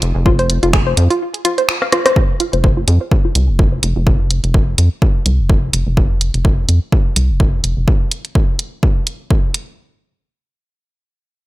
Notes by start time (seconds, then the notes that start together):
0.02 F1, closed hi-hat
0.15 F1
0.26 F4, kick
0.39 C5, closed hi-hat
0.50 closed hi-hat
0.63 F1 F4, closed hi-hat
0.73 G#4, finger snap, kick
0.87 C5
0.97 F2, closed hi-hat
1.10 F4, closed hi-hat
1.34 closed hi-hat
1.45 F4, closed hi-hat
1.58 C5, closed hi-hat
1.69 finger snap
1.82 F5, cross-stick
1.92 F4, cross-stick, closed hi-hat
2.06 C5, cross-stick, closed hi-hat
2.16 kick
2.40 F4, closed hi-hat
2.53 F1 C5, closed hi-hat
2.64 kick
2.77 F4
2.88 F2 G#4, closed hi-hat
3.01 C5
3.11 kick
3.25 F4
3.35 C2, closed hi-hat
3.49 F1
3.59 F4, kick
3.72 C5
3.83 F1, closed hi-hat
3.96 F1 F4
4.07 kick
4.31 closed hi-hat
4.44 F1, closed hi-hat
4.54 kick
4.78 F2, closed hi-hat
5.02 kick
5.26 C2, closed hi-hat
5.39 F1
5.50 kick
5.73 F1, closed hi-hat
5.87 F1
5.97 kick
6.21 closed hi-hat
6.34 F1, closed hi-hat
6.45 kick
6.69 F2, closed hi-hat
6.92 kick
7.16 C2, closed hi-hat
7.29 F1
7.40 kick
7.64 F1, closed hi-hat
7.77 F1
7.88 kick
8.11 closed hi-hat
8.25 closed hi-hat
8.35 kick
8.59 closed hi-hat
8.83 kick
9.07 closed hi-hat
9.31 kick
9.54 closed hi-hat